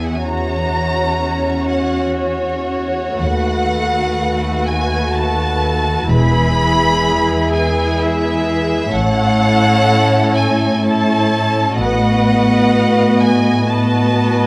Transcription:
0, 0, Header, 1, 6, 480
1, 0, Start_track
1, 0, Tempo, 967742
1, 118, Time_signature, 3, 2, 24, 8
1, 1078, Tempo, 1039861
1, 1558, Tempo, 964630
1, 2038, Tempo, 952381
1, 7224, End_track
2, 0, Start_track
2, 0, Title_t, "Violin section"
2, 0, Program_c, 0, 48
2, 27, Note_on_c, 0, 78, 44
2, 72, Note_on_c, 0, 80, 49
2, 73, Note_off_c, 0, 78, 0
2, 117, Note_off_c, 0, 80, 0
2, 124, Note_on_c, 0, 82, 61
2, 833, Note_on_c, 0, 78, 51
2, 838, Note_off_c, 0, 82, 0
2, 1072, Note_off_c, 0, 78, 0
2, 1077, Note_on_c, 0, 73, 58
2, 1548, Note_off_c, 0, 73, 0
2, 1555, Note_on_c, 0, 78, 72
2, 2274, Note_off_c, 0, 78, 0
2, 2279, Note_on_c, 0, 80, 66
2, 2518, Note_off_c, 0, 80, 0
2, 2523, Note_on_c, 0, 81, 66
2, 3007, Note_off_c, 0, 81, 0
2, 3009, Note_on_c, 0, 83, 85
2, 3727, Note_on_c, 0, 80, 68
2, 3731, Note_off_c, 0, 83, 0
2, 3961, Note_off_c, 0, 80, 0
2, 3968, Note_on_c, 0, 76, 74
2, 4437, Note_on_c, 0, 78, 96
2, 4439, Note_off_c, 0, 76, 0
2, 5149, Note_off_c, 0, 78, 0
2, 5151, Note_on_c, 0, 80, 66
2, 5389, Note_off_c, 0, 80, 0
2, 5390, Note_on_c, 0, 81, 75
2, 5866, Note_on_c, 0, 78, 79
2, 5871, Note_off_c, 0, 81, 0
2, 6573, Note_off_c, 0, 78, 0
2, 6585, Note_on_c, 0, 80, 63
2, 6825, Note_on_c, 0, 81, 61
2, 6828, Note_off_c, 0, 80, 0
2, 7224, Note_off_c, 0, 81, 0
2, 7224, End_track
3, 0, Start_track
3, 0, Title_t, "Violin section"
3, 0, Program_c, 1, 48
3, 0, Note_on_c, 1, 68, 40
3, 0, Note_on_c, 1, 76, 39
3, 94, Note_off_c, 1, 68, 0
3, 96, Note_off_c, 1, 76, 0
3, 115, Note_on_c, 1, 66, 41
3, 118, Note_on_c, 1, 73, 42
3, 1539, Note_off_c, 1, 73, 0
3, 1557, Note_on_c, 1, 71, 47
3, 2982, Note_off_c, 1, 66, 0
3, 3009, Note_on_c, 1, 68, 52
3, 4417, Note_off_c, 1, 71, 0
3, 4420, Note_off_c, 1, 68, 0
3, 4436, Note_on_c, 1, 69, 61
3, 4439, Note_on_c, 1, 73, 57
3, 5367, Note_off_c, 1, 69, 0
3, 5368, Note_off_c, 1, 73, 0
3, 5387, Note_on_c, 1, 69, 56
3, 5387, Note_on_c, 1, 73, 53
3, 5859, Note_off_c, 1, 73, 0
3, 5860, Note_off_c, 1, 69, 0
3, 5869, Note_on_c, 1, 71, 55
3, 5869, Note_on_c, 1, 75, 54
3, 6810, Note_off_c, 1, 75, 0
3, 6824, Note_off_c, 1, 71, 0
3, 6828, Note_on_c, 1, 75, 48
3, 6830, Note_on_c, 1, 71, 46
3, 7224, Note_off_c, 1, 71, 0
3, 7224, Note_off_c, 1, 75, 0
3, 7224, End_track
4, 0, Start_track
4, 0, Title_t, "Viola section"
4, 0, Program_c, 2, 48
4, 0, Note_on_c, 2, 59, 38
4, 0, Note_on_c, 2, 64, 38
4, 96, Note_off_c, 2, 64, 0
4, 97, Note_off_c, 2, 59, 0
4, 116, Note_on_c, 2, 66, 36
4, 117, Note_on_c, 2, 61, 40
4, 1554, Note_on_c, 2, 57, 41
4, 1557, Note_off_c, 2, 61, 0
4, 2981, Note_off_c, 2, 57, 0
4, 2983, Note_off_c, 2, 66, 0
4, 3002, Note_on_c, 2, 56, 52
4, 3006, Note_on_c, 2, 64, 56
4, 4416, Note_off_c, 2, 56, 0
4, 4419, Note_off_c, 2, 64, 0
4, 4439, Note_on_c, 2, 61, 51
4, 4441, Note_on_c, 2, 64, 54
4, 5368, Note_off_c, 2, 61, 0
4, 5369, Note_off_c, 2, 64, 0
4, 5378, Note_on_c, 2, 64, 49
4, 5382, Note_on_c, 2, 61, 51
4, 5855, Note_off_c, 2, 64, 0
4, 5857, Note_off_c, 2, 61, 0
4, 5862, Note_on_c, 2, 66, 50
4, 5864, Note_on_c, 2, 59, 56
4, 6807, Note_off_c, 2, 66, 0
4, 6821, Note_off_c, 2, 59, 0
4, 6827, Note_on_c, 2, 59, 48
4, 6827, Note_on_c, 2, 66, 46
4, 7224, Note_off_c, 2, 59, 0
4, 7224, Note_off_c, 2, 66, 0
4, 7224, End_track
5, 0, Start_track
5, 0, Title_t, "Cello section"
5, 0, Program_c, 3, 48
5, 0, Note_on_c, 3, 40, 38
5, 1539, Note_off_c, 3, 40, 0
5, 1555, Note_on_c, 3, 39, 53
5, 2982, Note_off_c, 3, 39, 0
5, 3002, Note_on_c, 3, 40, 55
5, 4417, Note_off_c, 3, 40, 0
5, 4436, Note_on_c, 3, 45, 58
5, 5848, Note_off_c, 3, 45, 0
5, 5862, Note_on_c, 3, 45, 54
5, 7224, Note_off_c, 3, 45, 0
5, 7224, End_track
6, 0, Start_track
6, 0, Title_t, "Double bass section"
6, 0, Program_c, 4, 48
6, 1556, Note_on_c, 4, 39, 45
6, 2017, Note_off_c, 4, 39, 0
6, 3003, Note_on_c, 4, 28, 54
6, 3466, Note_off_c, 4, 28, 0
6, 4437, Note_on_c, 4, 33, 48
6, 4892, Note_off_c, 4, 33, 0
6, 5870, Note_on_c, 4, 33, 48
6, 6329, Note_off_c, 4, 33, 0
6, 7224, End_track
0, 0, End_of_file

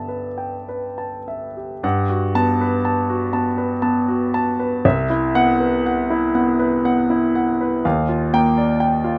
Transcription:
0, 0, Header, 1, 2, 480
1, 0, Start_track
1, 0, Key_signature, 1, "major"
1, 0, Tempo, 1167315
1, 754, Time_signature, 3, 2, 24, 8
1, 754, Tempo, 1001669
1, 3634, Tempo, 956938
1, 4305, End_track
2, 0, Start_track
2, 0, Title_t, "Grand piano"
2, 0, Program_c, 0, 0
2, 0, Control_c, 0, 64, 127
2, 0, Note_on_c, 0, 43, 47
2, 0, Note_on_c, 0, 50, 38
2, 0, Note_on_c, 0, 59, 42
2, 0, Note_on_c, 0, 67, 40
2, 0, Note_on_c, 0, 76, 44
2, 0, Note_on_c, 0, 81, 58
2, 35, Note_on_c, 0, 71, 42
2, 107, Note_off_c, 0, 81, 0
2, 155, Note_on_c, 0, 79, 43
2, 230, Note_off_c, 0, 71, 0
2, 282, Note_on_c, 0, 71, 44
2, 352, Note_off_c, 0, 79, 0
2, 402, Note_on_c, 0, 81, 44
2, 477, Note_off_c, 0, 71, 0
2, 526, Note_off_c, 0, 76, 0
2, 526, Note_on_c, 0, 76, 41
2, 598, Note_off_c, 0, 81, 0
2, 644, Note_off_c, 0, 67, 0
2, 644, Note_on_c, 0, 67, 37
2, 711, Note_off_c, 0, 76, 0
2, 736, Note_off_c, 0, 43, 0
2, 754, Note_off_c, 0, 67, 0
2, 754, Note_on_c, 0, 43, 75
2, 756, Note_on_c, 0, 78, 69
2, 761, Control_c, 0, 64, 0
2, 763, Note_off_c, 0, 59, 0
2, 764, Note_off_c, 0, 50, 0
2, 846, Control_c, 0, 64, 127
2, 880, Note_on_c, 0, 66, 59
2, 951, Note_off_c, 0, 78, 0
2, 1002, Note_on_c, 0, 59, 59
2, 1003, Note_on_c, 0, 81, 83
2, 1073, Note_off_c, 0, 66, 0
2, 1126, Note_on_c, 0, 71, 63
2, 1193, Note_off_c, 0, 59, 0
2, 1193, Note_off_c, 0, 81, 0
2, 1241, Note_on_c, 0, 81, 66
2, 1312, Note_off_c, 0, 71, 0
2, 1359, Note_on_c, 0, 66, 62
2, 1426, Note_off_c, 0, 81, 0
2, 1471, Note_on_c, 0, 81, 60
2, 1472, Note_on_c, 0, 59, 51
2, 1543, Note_off_c, 0, 66, 0
2, 1590, Note_on_c, 0, 71, 56
2, 1659, Note_off_c, 0, 59, 0
2, 1659, Note_off_c, 0, 81, 0
2, 1707, Note_on_c, 0, 59, 57
2, 1707, Note_on_c, 0, 81, 66
2, 1780, Note_off_c, 0, 71, 0
2, 1832, Note_on_c, 0, 66, 58
2, 1901, Note_off_c, 0, 59, 0
2, 1901, Note_off_c, 0, 81, 0
2, 1956, Note_on_c, 0, 81, 71
2, 2027, Note_off_c, 0, 66, 0
2, 2077, Note_on_c, 0, 71, 60
2, 2150, Note_off_c, 0, 81, 0
2, 2178, Note_off_c, 0, 43, 0
2, 2198, Note_off_c, 0, 71, 0
2, 2200, Note_on_c, 0, 36, 77
2, 2200, Note_on_c, 0, 76, 69
2, 2204, Control_c, 0, 64, 0
2, 2297, Control_c, 0, 64, 127
2, 2319, Note_on_c, 0, 64, 57
2, 2393, Note_off_c, 0, 76, 0
2, 2440, Note_on_c, 0, 59, 59
2, 2440, Note_on_c, 0, 78, 92
2, 2511, Note_off_c, 0, 64, 0
2, 2560, Note_on_c, 0, 71, 57
2, 2631, Note_off_c, 0, 59, 0
2, 2631, Note_off_c, 0, 78, 0
2, 2685, Note_on_c, 0, 78, 66
2, 2750, Note_off_c, 0, 71, 0
2, 2800, Note_on_c, 0, 64, 63
2, 2871, Note_off_c, 0, 78, 0
2, 2917, Note_on_c, 0, 59, 57
2, 2917, Note_on_c, 0, 78, 61
2, 2988, Note_off_c, 0, 64, 0
2, 3036, Note_on_c, 0, 71, 62
2, 3107, Note_off_c, 0, 59, 0
2, 3107, Note_off_c, 0, 78, 0
2, 3157, Note_on_c, 0, 59, 57
2, 3159, Note_on_c, 0, 78, 70
2, 3227, Note_off_c, 0, 71, 0
2, 3277, Note_on_c, 0, 64, 59
2, 3348, Note_off_c, 0, 59, 0
2, 3349, Note_off_c, 0, 78, 0
2, 3399, Note_on_c, 0, 78, 63
2, 3467, Note_off_c, 0, 64, 0
2, 3521, Note_on_c, 0, 71, 55
2, 3587, Note_off_c, 0, 78, 0
2, 3614, Note_off_c, 0, 36, 0
2, 3636, Note_off_c, 0, 71, 0
2, 3637, Note_on_c, 0, 39, 76
2, 3637, Note_on_c, 0, 77, 64
2, 3641, Control_c, 0, 64, 0
2, 3731, Control_c, 0, 64, 127
2, 3757, Note_on_c, 0, 65, 61
2, 3829, Note_off_c, 0, 77, 0
2, 3881, Note_on_c, 0, 58, 62
2, 3882, Note_on_c, 0, 79, 88
2, 3949, Note_off_c, 0, 65, 0
2, 4002, Note_on_c, 0, 74, 63
2, 4069, Note_off_c, 0, 58, 0
2, 4070, Note_off_c, 0, 79, 0
2, 4114, Note_on_c, 0, 79, 73
2, 4189, Note_off_c, 0, 74, 0
2, 4235, Note_on_c, 0, 65, 63
2, 4304, Note_off_c, 0, 79, 0
2, 4305, Note_off_c, 0, 39, 0
2, 4305, Note_off_c, 0, 65, 0
2, 4305, End_track
0, 0, End_of_file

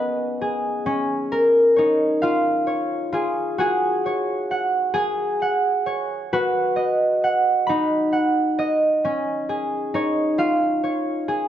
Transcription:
0, 0, Header, 1, 2, 480
1, 0, Start_track
1, 0, Key_signature, 6, "major"
1, 0, Tempo, 909091
1, 456, Time_signature, 6, 3, 24, 8
1, 3816, Tempo, 898204
1, 6089, End_track
2, 0, Start_track
2, 0, Title_t, "Harp"
2, 0, Program_c, 0, 46
2, 0, Note_on_c, 0, 59, 71
2, 0, Note_on_c, 0, 61, 66
2, 0, Note_on_c, 0, 63, 78
2, 0, Note_on_c, 0, 66, 69
2, 0, Note_on_c, 0, 68, 73
2, 0, Note_on_c, 0, 71, 56
2, 0, Note_on_c, 0, 75, 79
2, 79, Note_off_c, 0, 66, 0
2, 217, Note_off_c, 0, 68, 0
2, 219, Note_on_c, 0, 68, 68
2, 451, Note_off_c, 0, 63, 0
2, 452, Note_off_c, 0, 61, 0
2, 454, Note_on_c, 0, 61, 81
2, 678, Note_off_c, 0, 75, 0
2, 696, Note_on_c, 0, 70, 70
2, 728, Note_off_c, 0, 59, 0
2, 728, Note_off_c, 0, 71, 0
2, 931, Note_on_c, 0, 73, 61
2, 942, Note_on_c, 0, 63, 65
2, 1171, Note_on_c, 0, 77, 74
2, 1177, Note_on_c, 0, 65, 88
2, 1407, Note_off_c, 0, 73, 0
2, 1409, Note_on_c, 0, 73, 59
2, 1419, Note_off_c, 0, 68, 0
2, 1648, Note_off_c, 0, 65, 0
2, 1650, Note_on_c, 0, 65, 70
2, 1657, Note_on_c, 0, 68, 64
2, 1816, Note_off_c, 0, 70, 0
2, 1892, Note_on_c, 0, 66, 86
2, 1898, Note_off_c, 0, 68, 0
2, 1900, Note_on_c, 0, 68, 80
2, 1924, Note_off_c, 0, 65, 0
2, 1924, Note_off_c, 0, 77, 0
2, 1984, Note_off_c, 0, 61, 0
2, 2141, Note_off_c, 0, 73, 0
2, 2143, Note_on_c, 0, 73, 63
2, 2370, Note_off_c, 0, 63, 0
2, 2381, Note_on_c, 0, 78, 59
2, 2605, Note_off_c, 0, 68, 0
2, 2607, Note_on_c, 0, 68, 94
2, 2619, Note_on_c, 0, 80, 73
2, 2859, Note_off_c, 0, 78, 0
2, 2861, Note_on_c, 0, 78, 58
2, 3093, Note_off_c, 0, 73, 0
2, 3095, Note_on_c, 0, 73, 68
2, 3179, Note_off_c, 0, 66, 0
2, 3341, Note_on_c, 0, 66, 90
2, 3342, Note_on_c, 0, 71, 82
2, 3411, Note_off_c, 0, 80, 0
2, 3570, Note_on_c, 0, 75, 62
2, 3710, Note_off_c, 0, 78, 0
2, 3808, Note_off_c, 0, 68, 0
2, 3822, Note_on_c, 0, 78, 67
2, 4051, Note_on_c, 0, 83, 74
2, 4065, Note_on_c, 0, 63, 77
2, 4108, Note_off_c, 0, 73, 0
2, 4294, Note_off_c, 0, 78, 0
2, 4296, Note_on_c, 0, 78, 59
2, 4431, Note_off_c, 0, 71, 0
2, 4535, Note_off_c, 0, 75, 0
2, 4543, Note_on_c, 0, 75, 72
2, 4638, Note_off_c, 0, 66, 0
2, 4776, Note_off_c, 0, 83, 0
2, 4788, Note_on_c, 0, 61, 80
2, 5026, Note_on_c, 0, 68, 69
2, 5155, Note_off_c, 0, 78, 0
2, 5264, Note_off_c, 0, 63, 0
2, 5266, Note_on_c, 0, 63, 78
2, 5271, Note_on_c, 0, 73, 65
2, 5496, Note_off_c, 0, 75, 0
2, 5502, Note_on_c, 0, 65, 70
2, 5504, Note_on_c, 0, 77, 73
2, 5742, Note_off_c, 0, 73, 0
2, 5744, Note_on_c, 0, 73, 58
2, 5981, Note_off_c, 0, 68, 0
2, 5983, Note_on_c, 0, 68, 68
2, 6089, Note_off_c, 0, 61, 0
2, 6089, Note_off_c, 0, 63, 0
2, 6089, Note_off_c, 0, 65, 0
2, 6089, Note_off_c, 0, 68, 0
2, 6089, Note_off_c, 0, 73, 0
2, 6089, Note_off_c, 0, 77, 0
2, 6089, End_track
0, 0, End_of_file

